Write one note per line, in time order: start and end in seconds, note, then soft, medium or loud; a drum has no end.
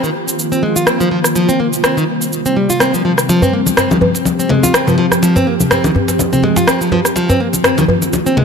0.00 1.34 D#3 medium
0.00 0.09 D#3 medium
0.00 1.34 A#3 medium
0.00 1.34 F4 medium
0.00 shaker soft
0.28 shaker medium
0.39 shaker medium
0.52 0.62 C4 medium
0.52 shaker soft
0.63 0.75 G#3 medium
0.76 0.87 F4 medium
0.76 shaker medium
0.87 0.99 C4 medium
0.87 cross-stick medium
0.87 shaker medium
1.00 1.10 F3 medium
1.00 shaker soft
1.11 1.19 F3 medium
1.24 cross-stick medium
1.24 shaker medium
1.36 3.27 C3 medium
1.36 1.47 F3 medium
1.36 3.27 G3 medium
1.36 7.12 C4 medium
1.36 shaker medium
1.49 1.59 C4 medium
1.49 shaker soft
1.60 1.67 A#3 medium
1.73 shaker medium
1.84 1.96 C4 medium
1.84 cross-stick medium
1.84 shaker medium
1.97 2.03 D#3 medium
1.97 shaker soft
2.22 shaker medium
2.33 shaker medium
2.46 2.56 C4 medium
2.46 shaker soft
2.57 2.69 G3 medium
2.70 2.80 F4 medium
2.70 shaker medium
2.80 2.93 C4 medium
2.80 cross-stick medium
2.80 shaker medium
2.94 3.04 F3 medium
2.94 shaker soft
3.05 3.12 F3 medium
3.18 cross-stick medium
3.18 shaker medium
3.29 7.12 F3 medium
3.29 3.41 F3 medium
3.29 7.12 G4 medium
3.29 muted conga soft
3.29 shaker medium
3.42 3.52 C4 medium
3.42 djembe bass medium
3.42 shaker soft
3.53 3.60 A#3 medium
3.67 muted conga soft
3.67 high conga medium
3.67 shaker medium
3.77 3.90 C4 medium
3.77 cross-stick medium
3.77 djembe tone medium
3.77 shaker medium
3.91 3.97 D#3 medium
3.91 muted conga medium
3.91 high conga loud
3.91 shaker soft
4.01 high conga medium
4.01 djembe tone medium
4.01 djembe bass medium
4.15 muted conga soft
4.15 shaker medium
4.25 high conga medium
4.25 shaker medium
4.39 4.49 C4 medium
4.39 shaker soft
4.49 4.63 G#3 medium
4.49 muted conga soft
4.49 djembe slap medium
4.49 low conga medium
4.63 4.74 F4 medium
4.63 high conga medium
4.63 shaker medium
4.74 4.86 C4 medium
4.74 cross-stick loud
4.74 muted conga soft
4.74 shaker medium
4.87 4.97 F3 medium
4.87 djembe tone medium
4.87 low conga medium
4.87 shaker soft
4.98 5.06 F3 medium
4.98 muted conga soft
5.12 cross-stick medium
5.12 djembe slap medium
5.12 shaker medium
5.23 5.35 F3 medium
5.23 muted conga soft
5.23 shaker medium
5.36 5.46 C4 medium
5.36 djembe bass medium
5.36 shaker soft
5.47 5.54 A#3 medium
5.60 muted conga soft
5.60 high conga medium
5.60 low conga medium
5.60 shaker medium
5.71 5.83 C4 medium
5.71 cross-stick medium
5.71 djembe tone medium
5.71 shaker medium
5.84 5.90 D#3 medium
5.84 muted conga medium
5.84 high conga loud
5.84 shaker soft
5.95 high conga medium
5.95 djembe tone medium
5.95 djembe bass medium
6.08 djembe slap medium
6.08 muted conga soft
6.08 shaker medium
6.19 high conga loud
6.19 djembe tone medium
6.19 shaker medium
6.33 6.43 C4 medium
6.33 low conga medium
6.33 shaker soft
6.43 6.56 G#3 medium
6.43 muted conga soft
6.43 djembe tone medium
6.56 6.67 F4 medium
6.56 djembe slap medium
6.56 shaker medium
6.68 6.80 C4 medium
6.68 cross-stick loud
6.68 muted conga soft
6.68 shaker medium
6.81 6.91 F3 medium
6.81 shaker soft
6.92 6.99 F3 medium
6.92 muted conga soft
6.92 djembe tone medium
6.92 high conga medium
7.05 cross-stick medium
7.05 shaker medium
7.16 8.45 D#3 medium
7.16 7.28 F3 medium
7.16 8.45 A#3 medium
7.16 8.45 F4 medium
7.16 muted conga medium
7.16 shaker medium
7.29 7.39 C4 loud
7.29 djembe bass medium
7.29 shaker soft
7.40 7.48 A#3 medium
7.53 muted conga soft
7.53 high conga medium
7.53 shaker medium
7.64 7.77 C4 medium
7.64 cross-stick loud
7.64 djembe tone medium
7.64 shaker medium
7.78 7.84 D#3 medium
7.78 muted conga soft
7.78 high conga loud
7.78 shaker soft
7.88 djembe tone medium
7.88 high conga medium
7.88 djembe bass medium
8.02 muted conga soft
8.02 shaker medium
8.13 high conga medium
8.13 shaker medium
8.26 8.36 C4 medium
8.26 shaker soft
8.37 8.45 G#3 medium
8.37 muted conga soft
8.37 djembe slap medium
8.37 low conga medium